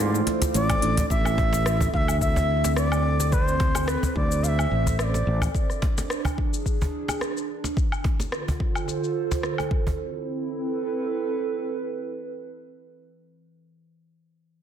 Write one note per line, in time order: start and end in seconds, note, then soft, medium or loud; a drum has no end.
0.00 0.20 G#2 loud
0.00 1.11 E3 medium
0.00 1.09 C4 medium
0.00 9.71 E4 medium
0.00 0.13 F4 loud
0.00 5.54 A4 medium
0.00 1.10 C5 medium
0.00 1.11 C5 medium
0.00 0.24 D5 medium
0.00 cajon slap soft
0.00 cabasa medium
0.14 0.21 A3 medium
0.14 cabasa soft
0.27 cajon slap medium
0.27 closed hi-hat soft
0.42 0.54 F4 medium
0.42 cajon bass medium
0.42 closed hi-hat medium
0.42 cabasa medium
0.54 0.74 A1 medium
0.54 0.81 A3 medium
0.54 1.06 D5 loud
0.54 closed hi-hat soft
0.54 cabasa medium
0.70 kick medium
0.70 cajon slap medium
0.70 closed hi-hat soft
0.70 cabasa soft
0.70 low woodblock medium
0.82 1.02 A1 medium
0.82 0.97 D4 medium
0.82 closed hi-hat medium
0.97 cajon bass medium
0.97 closed hi-hat soft
0.97 cabasa medium
1.10 1.87 A1 loud
1.10 5.55 C4 medium
1.10 1.89 E5 loud
1.10 kick loud
1.10 cabasa medium
1.25 cross-stick soft
1.25 cabasa soft
1.25 low woodblock medium
1.38 kick loud
1.38 cajon slap medium
1.53 cajon slap medium
1.53 cabasa medium
1.66 cross-stick loud
1.66 cabasa medium
1.80 cajon bass medium
1.80 cabasa soft
1.93 3.95 D2 loud
1.93 2.19 E5 loud
1.93 1.98 F5 medium
1.93 kick loud
2.08 cabasa medium
2.08 low woodblock medium
2.21 2.73 E5 loud
2.21 kick medium
2.21 cabasa medium
2.26 7.77 C5 medium
2.36 cajon bass medium
2.36 cabasa soft
2.64 cajon slap medium
2.64 cabasa medium
2.77 3.34 D5 loud
2.77 cross-stick medium
2.77 cabasa medium
2.92 cabasa soft
2.92 low woodblock medium
3.20 cajon slap medium
3.20 cabasa medium
3.32 3.91 C5 loud
3.32 kick loud
3.32 cabasa medium
3.48 cabasa soft
3.60 kick medium
3.60 cajon slap medium
3.75 cajon slap medium
3.75 cabasa medium
3.75 low woodblock medium
3.88 4.15 B4 medium
3.88 cross-stick loud
3.88 cabasa medium
4.03 cajon bass medium
4.03 cabasa soft
4.16 4.65 D2 medium
4.16 4.45 D5 medium
4.16 kick medium
4.32 cabasa medium
4.43 4.49 F5 medium
4.43 cajon slap soft
4.43 cabasa medium
4.48 4.99 E5 medium
4.59 cabasa soft
4.59 low woodblock medium
4.71 5.26 A1 medium
4.87 cajon bass medium
4.87 cabasa medium
4.99 5.04 E5 medium
4.99 cross-stick medium
4.99 cabasa medium
5.03 5.51 D5 medium
5.14 cajon slap medium
5.14 cabasa soft
5.27 5.46 A1 medium
5.42 cajon bass medium
5.42 cabasa medium
5.42 low woodblock medium
5.55 8.66 D4 medium
5.55 kick loud
5.55 cabasa medium
5.70 cross-stick soft
5.70 cabasa soft
5.82 kick loud
5.82 cajon slap medium
5.98 cajon slap medium
5.98 cabasa medium
6.10 cross-stick medium
6.10 cabasa medium
6.17 7.77 G#4 medium
6.25 cajon bass medium
6.25 cabasa soft
6.25 low woodblock medium
6.38 kick loud
6.54 cabasa medium
6.66 kick medium
6.66 cabasa medium
6.81 cajon bass medium
6.81 cabasa soft
7.08 cajon slap medium
7.08 cabasa medium
7.08 low woodblock medium
7.21 cross-stick medium
7.21 cabasa medium
7.37 cabasa soft
7.64 cajon slap medium
7.64 cabasa medium
7.77 9.72 D3 medium
7.77 kick loud
7.77 cabasa medium
7.92 cabasa soft
7.92 low woodblock medium
7.99 9.72 F4 medium
8.04 kick medium
8.04 cajon slap medium
8.20 cajon slap medium
8.20 cabasa medium
8.32 9.72 C5 medium
8.32 cross-stick medium
8.32 cabasa soft
8.48 9.72 A4 medium
8.48 cajon bass medium
8.48 cabasa soft
8.60 kick medium
8.75 cabasa medium
8.75 low woodblock medium
8.88 cajon slap soft
8.88 cabasa medium
9.04 cabasa soft
9.31 cajon bass medium
9.31 cabasa medium
9.43 cross-stick medium
9.43 cabasa soft
9.58 cajon slap soft
9.58 cabasa soft
9.58 low woodblock medium
9.71 12.98 C4 medium
9.71 kick loud
9.81 12.98 E4 medium
9.87 cajon bass medium
10.17 12.97 A4 medium
10.25 12.98 B4 medium